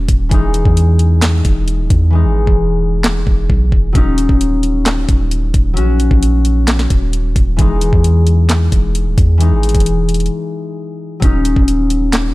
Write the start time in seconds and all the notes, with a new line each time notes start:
Already playing: F#3 C#4 F#4
0.09 D#1, kick, closed hi-hat
0.29 E1 E3 G#3, kick, closed hi-hat
0.34 D#4
0.54 closed hi-hat
0.65 E2, kick
0.77 closed hi-hat
0.99 closed hi-hat
1.22 snare, clap, closed hi-hat
1.45 E1, kick, closed hi-hat
1.68 closed hi-hat
1.79 D#1
1.90 E2, kick, closed hi-hat
2.10 E3 G#3
2.15 D#4
2.25 G#1
2.47 E1, kick
3.04 snare, clap
3.27 E1, kick
3.50 B1, kick
3.72 E1, kick
3.93 D#1 F#3 C#4, kick, closed hi-hat
3.97 D#4
4.18 closed hi-hat
4.29 D#1, kick
4.41 closed hi-hat
4.63 closed hi-hat
4.86 snare, clap, closed hi-hat
5.09 D#1, kick, closed hi-hat
5.31 closed hi-hat
5.54 D#1, kick, closed hi-hat
5.74 A#1 F#3 C#4, closed hi-hat
5.78 F#4
6.00 closed hi-hat
6.11 A#1, kick
6.23 closed hi-hat
6.45 closed hi-hat
6.67 snare, clap, closed hi-hat
6.79 snare
6.90 D#1, kick, closed hi-hat
7.13 closed hi-hat
7.36 D#1, kick, closed hi-hat
7.57 E1 E3 G#3, kick, closed hi-hat
7.61 D#4
7.81 closed hi-hat
7.93 E2, kick
8.04 closed hi-hat
8.27 closed hi-hat
8.49 snare, clap, closed hi-hat
8.72 E1, kick, closed hi-hat
8.95 closed hi-hat
9.06 D#1
9.18 E2, kick, closed hi-hat
9.38 E3 G#3, closed hi-hat
9.42 D#4
9.52 G#1
9.63 closed hi-hat
9.69 closed hi-hat
9.75 E1, kick, closed hi-hat
9.80 closed hi-hat
9.86 closed hi-hat
10.09 closed hi-hat
10.14 closed hi-hat
10.20 closed hi-hat
10.26 closed hi-hat
11.20 D#1 F#3 C#4, kick, closed hi-hat
11.24 D#4
11.45 closed hi-hat
11.56 D#1, kick
11.68 closed hi-hat
11.90 closed hi-hat
12.13 snare, clap, closed hi-hat